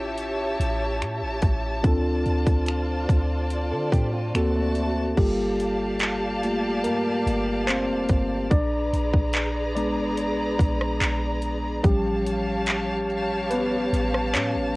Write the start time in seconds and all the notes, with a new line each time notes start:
Already playing: A1 C#4 E4 F4 G4 C#5 E5 A5
0.17 closed hi-hat
0.60 A1, closed hi-hat
1.01 A2, finger snap, closed hi-hat
1.22 A1
1.42 A1, kick, closed hi-hat
1.83 D2 C4 D4 F4 A4 C5 D5, kick, closed hi-hat
2.26 D2, closed hi-hat
2.47 D2, kick, closed hi-hat
2.66 finger snap, closed hi-hat
3.09 D2, kick, closed hi-hat
3.51 closed hi-hat
3.71 D3 D4 A4
3.92 A2 D4 G4, kick, closed hi-hat
4.13 C4 F4
4.34 D2 A#3 C4 F#4 A4 A5, finger snap, closed hi-hat
4.55 A3 D4
4.75 closed hi-hat
5.17 G1 G3 A#3 F4 G4 A4 D5 F5 A5, kick, closed hi-hat, crash
5.60 closed hi-hat
5.99 clap, closed hi-hat
6.43 A3 A#3 F4, closed hi-hat
6.83 G2 A#3 A#4, closed hi-hat
7.26 G1, closed hi-hat
7.67 C4 C5, clap, closed hi-hat
7.89 F1
8.08 G1, kick, closed hi-hat
8.50 A#1 D4 G#4 B4 D5 A#5, kick, closed hi-hat
8.93 A#1, closed hi-hat
9.13 A#1, kick
9.33 clap, closed hi-hat
9.75 G#3 B3 D4 D5, closed hi-hat
9.97 G#1
10.17 closed hi-hat
10.28 A#1
10.59 A#1, kick, closed hi-hat
10.81 cross-stick
11.01 A#1, clap, closed hi-hat
11.42 closed hi-hat
11.84 A1 F3 G3 C#4 G4 C#5 F5 A5, kick, closed hi-hat
12.27 closed hi-hat
12.66 clap, closed hi-hat
13.10 closed hi-hat
13.50 B3 B4, closed hi-hat
13.93 A1, closed hi-hat
14.14 cross-stick
14.34 A2 C#4 C#5, clap, closed hi-hat
14.55 A1